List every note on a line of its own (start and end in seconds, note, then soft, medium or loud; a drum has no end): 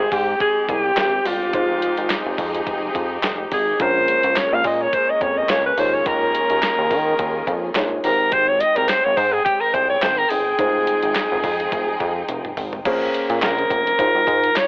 0.00 1.21 G#3 medium
0.00 1.51 G#3 medium
0.00 3.76 C4 medium
0.00 1.21 D#4 medium
0.00 1.21 G4 medium
0.00 3.76 G4 medium
0.00 0.15 G#4 medium
0.00 1.21 C5 medium
0.12 0.35 G#2 loud
0.12 0.40 G4 medium
0.12 kick loud
0.12 open hi-hat medium
0.40 0.72 G#4 medium
0.40 kick loud
0.40 closed hi-hat medium
0.69 0.92 C2 medium
0.69 1.28 G4 loud
0.69 kick loud
0.69 closed hi-hat medium
0.97 1.20 G#1 loud
0.97 snare loud
0.97 clap medium
0.97 closed hi-hat medium
1.25 1.55 G1 medium
1.25 2.39 F4 medium
1.25 open hi-hat medium
1.53 1.89 F1 medium
1.53 3.77 F3 medium
1.53 3.75 G#3 medium
1.53 3.77 D#4 medium
1.53 3.76 D#4 medium
1.53 3.76 F4 medium
1.53 3.77 G#4 loud
1.53 3.76 C5 medium
1.53 kick loud
1.53 closed hi-hat medium
1.82 closed hi-hat medium
1.97 2.08 G#1 medium
1.97 closed hi-hat soft
2.10 snare loud
2.10 clap medium
2.10 closed hi-hat medium
2.26 2.36 F1 loud
2.38 2.61 F2 medium
2.38 kick loud
2.38 open hi-hat medium
2.55 closed hi-hat medium
2.67 2.90 F1 medium
2.67 kick loud
2.67 closed hi-hat medium
2.95 3.18 F2 medium
2.95 kick medium
2.95 closed hi-hat medium
3.23 3.47 F1 medium
3.23 snare loud
3.23 clap medium
3.23 closed hi-hat medium
3.52 3.75 G#1 medium
3.52 3.83 G#4 medium
3.52 kick medium
3.52 open hi-hat medium
3.80 4.16 A#1 loud
3.80 5.74 G#3 medium
3.80 5.76 G#3 medium
3.80 8.00 A#3 medium
3.80 5.74 C#4 medium
3.80 8.01 C#4 medium
3.80 5.74 F4 medium
3.80 5.75 A#4 medium
3.80 4.39 C5 loud
3.80 kick loud
3.80 closed hi-hat medium
4.08 closed hi-hat medium
4.23 4.34 C#2 medium
4.23 closed hi-hat soft
4.36 4.56 C#5 loud
4.36 snare loud
4.36 clap medium
4.36 closed hi-hat medium
4.52 4.62 A#1 loud
4.52 4.66 F5 medium
4.64 4.88 A#2 medium
4.64 4.83 D#5 medium
4.64 kick loud
4.64 open hi-hat medium
4.82 4.96 C#5 loud
4.93 5.12 C5 loud
4.93 kick loud
4.93 closed hi-hat medium
5.10 5.24 D#5 medium
5.21 5.44 F2 medium
5.21 5.39 C#5 medium
5.21 kick medium
5.21 closed hi-hat medium
5.38 5.50 D#5 medium
5.49 5.73 C#2 loud
5.49 5.65 C#5 medium
5.49 snare loud
5.49 clap medium
5.49 closed hi-hat medium
5.66 5.81 B4 medium
5.77 6.01 D#2 medium
5.77 8.02 D#3 medium
5.77 7.72 G#3 medium
5.77 7.72 D#4 medium
5.77 8.02 F4 medium
5.77 7.72 F4 medium
5.77 8.02 G#4 medium
5.77 5.96 C5 medium
5.77 7.73 C#5 medium
5.77 open hi-hat medium
5.94 6.09 C#5 medium
6.06 6.42 D#2 loud
6.06 7.76 A#4 medium
6.06 kick loud
6.06 closed hi-hat medium
6.35 closed hi-hat medium
6.50 6.60 D#2 medium
6.50 closed hi-hat soft
6.62 snare loud
6.62 clap medium
6.62 closed hi-hat medium
6.78 6.92 D#2 loud
6.91 7.14 D#3 loud
6.91 kick loud
6.91 open hi-hat medium
7.19 7.42 D#2 medium
7.19 kick loud
7.19 closed hi-hat medium
7.47 7.70 F2 medium
7.47 kick loud
7.47 closed hi-hat medium
7.75 7.99 A#1 loud
7.75 8.02 G#3 medium
7.75 8.03 D#4 soft
7.75 8.04 F4 soft
7.75 8.05 C#5 medium
7.75 snare loud
7.75 clap medium
7.75 closed hi-hat medium
8.04 8.63 G#1 loud
8.04 10.26 G#3 medium
8.04 10.56 G#3 medium
8.04 12.81 C4 medium
8.04 10.27 D#4 medium
8.04 10.27 G4 medium
8.04 8.34 A#4 medium
8.04 10.27 C5 medium
8.04 12.81 G5 medium
8.04 open hi-hat medium
8.32 8.50 C5 loud
8.32 kick loud
8.32 closed hi-hat medium
8.48 8.62 C#5 medium
8.60 8.78 D#5 loud
8.60 closed hi-hat medium
8.76 8.87 C2 medium
8.76 8.90 A#4 medium
8.76 closed hi-hat medium
8.89 9.06 C5 loud
8.89 snare loud
8.89 clap medium
8.89 closed hi-hat medium
9.05 9.15 G#1 loud
9.05 9.18 C#5 loud
9.17 9.40 G#2 medium
9.17 9.34 C5 medium
9.17 kick loud
9.17 open hi-hat medium
9.33 9.44 G#4 loud
9.45 9.62 G4 medium
9.45 kick loud
9.45 closed hi-hat medium
9.61 9.75 A#4 medium
9.73 9.97 C2 medium
9.73 9.89 C5 loud
9.73 kick medium
9.73 closed hi-hat medium
9.89 10.04 C#5 medium
10.02 10.25 G#1 loud
10.02 10.19 C5 medium
10.02 snare loud
10.02 clap medium
10.02 closed hi-hat medium
10.17 10.31 A#4 medium
10.30 10.54 G1 medium
10.30 12.28 G#4 medium
10.30 open hi-hat medium
10.58 10.95 F1 loud
10.58 12.83 F3 medium
10.58 12.81 G#3 medium
10.58 12.81 D#4 medium
10.58 12.83 D#4 medium
10.58 12.82 F4 medium
10.58 12.83 G#4 medium
10.58 12.82 C5 medium
10.58 kick loud
10.58 closed hi-hat medium
10.87 closed hi-hat medium
11.03 11.13 G#1 medium
11.03 closed hi-hat soft
11.15 snare loud
11.15 clap medium
11.15 closed hi-hat medium
11.32 11.42 F1 loud
11.44 11.67 F2 medium
11.44 kick loud
11.44 open hi-hat medium
11.60 closed hi-hat soft
11.72 11.95 F1 loud
11.72 kick loud
11.72 closed hi-hat medium
12.00 12.23 F2 medium
12.00 kick loud
12.00 closed hi-hat medium
12.29 12.52 F1 loud
12.29 closed hi-hat medium
12.29 high tom medium
12.45 mid tom medium
12.57 12.80 G#1 medium
12.57 mid tom medium
12.57 open hi-hat medium
12.73 floor tom medium
12.85 13.09 A#1 medium
12.85 13.96 A#3 medium
12.85 13.96 C#4 medium
12.85 13.97 G#4 medium
12.85 13.97 C5 medium
12.85 kick loud
12.85 closed hi-hat medium
12.85 crash medium
13.02 closed hi-hat soft
13.14 closed hi-hat medium
13.30 13.40 A#2 medium
13.30 closed hi-hat soft
13.42 13.65 A#1 loud
13.42 14.59 A#4 medium
13.42 snare loud
13.42 clap medium
13.42 closed hi-hat medium
13.58 closed hi-hat soft
13.70 13.93 F1 medium
13.70 kick loud
13.70 closed hi-hat medium
13.87 closed hi-hat medium
13.98 14.12 G#1 loud
13.98 14.67 G#3 medium
13.98 14.67 D#4 medium
13.98 14.67 F4 medium
13.98 14.67 C5 medium
13.98 kick loud
13.98 closed hi-hat medium
14.15 14.25 G#1 loud
14.27 14.50 G#2 medium
14.27 kick loud
14.27 closed hi-hat medium
14.44 closed hi-hat soft
14.56 14.67 C#5 loud
14.56 snare loud
14.56 clap medium
14.56 closed hi-hat loud